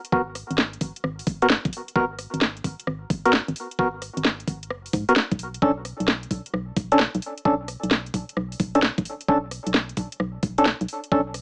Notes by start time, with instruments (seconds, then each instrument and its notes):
0.05 closed hi-hat
0.12 fm bass G#1, synth stab B3 F#4 A#4, kick
0.35 cross-stick, open hi-hat
0.51 fm bass G#1, closed hi-hat
0.58 snare
0.73 closed hi-hat
0.81 fm bass G#1, kick, open hi-hat
0.96 closed hi-hat
1.04 fm bass G#1, cross-stick
1.19 open hi-hat
1.27 fm bass G#1, kick, open hi-hat
1.42 synth stab B3 F#4 A#4, closed hi-hat
1.50 snare
1.65 fm bass G#1, kick, closed hi-hat
1.73 open hi-hat
1.88 closed hi-hat
1.96 fm bass G#1, synth stab B3 F#4 A#4, kick
2.19 cross-stick, open hi-hat
2.34 fm bass G#1, closed hi-hat
2.41 snare
2.57 closed hi-hat
2.64 fm bass G#1, kick, open hi-hat
2.80 closed hi-hat
2.87 fm bass G#1, cross-stick
3.10 fm bass G#1, kick, open hi-hat
3.25 synth stab B3 F#4 A#4, closed hi-hat
3.33 snare
3.48 fm bass G#1, closed hi-hat
3.56 open hi-hat
3.71 closed hi-hat
3.79 fm bass G#1, synth stab B3 F#4 A#4, kick
4.02 cross-stick, open hi-hat
4.17 fm bass G#1, closed hi-hat
4.25 snare
4.40 closed hi-hat
4.48 fm bass G#1, kick, open hi-hat
4.63 closed hi-hat
4.70 fm bass F#1, cross-stick
4.86 open hi-hat
4.93 fm bass G#2, kick, open hi-hat
5.09 synth stab B3 F#4 A#4, closed hi-hat
5.16 snare
5.31 fm bass B1, kick, closed hi-hat
5.39 open hi-hat
5.54 closed hi-hat
5.62 fm bass B1, synth stab C#4 D4 A4, kick
5.85 cross-stick, open hi-hat
6.00 fm bass B1, closed hi-hat
6.08 snare
6.23 closed hi-hat
6.31 fm bass B1, kick, open hi-hat
6.46 closed hi-hat
6.54 fm bass B1, cross-stick
6.76 fm bass B1, kick, open hi-hat
6.92 synth stab C#4 D4 A4, closed hi-hat
6.99 snare
7.15 fm bass B1, closed hi-hat
7.22 open hi-hat
7.38 closed hi-hat
7.45 fm bass B1, synth stab C#4 D4 A4, kick
7.68 cross-stick, open hi-hat
7.83 fm bass B1, closed hi-hat
7.91 snare
8.06 closed hi-hat
8.14 fm bass B1, kick, open hi-hat
8.29 closed hi-hat
8.37 fm bass B1, cross-stick
8.52 open hi-hat
8.60 fm bass B1, kick, open hi-hat
8.75 synth stab C#4 D4 A4, closed hi-hat
8.82 snare
8.98 fm bass B1, kick, closed hi-hat
9.05 open hi-hat
9.21 closed hi-hat
9.28 fm bass B1, synth stab C#4 D4 A4, kick
9.51 cross-stick, open hi-hat
9.67 fm bass B1, closed hi-hat
9.74 snare
9.89 closed hi-hat
9.97 fm bass B1, kick, open hi-hat
10.12 closed hi-hat
10.20 fm bass B1, cross-stick
10.43 fm bass B1, kick, open hi-hat
10.58 synth stab C#4 D4 A4, closed hi-hat
10.66 snare
10.81 fm bass B1, closed hi-hat
10.88 open hi-hat
11.04 closed hi-hat
11.12 fm bass B1, synth stab C#4 D4 A4, kick
11.34 cross-stick, open hi-hat